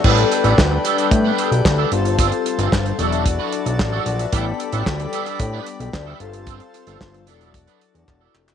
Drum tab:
CC |x---------------|----------------|----------------|----------------|
HH |-xxx--xxx-xx--xx|xxxx-xxxx-xx--xx|x-xx-xxxx-xx--xx|xxxx-xxxxxxx----|
CP |----x-------x---|----x-------x---|----x-------x---|----x-------x-xx|
SD |----o-------o---|----o-------o---|----o-------o---|----o-----------|
BD |o---o---o---o---|o---o---o---o---|o---o---o---o---|o---o---o---o---|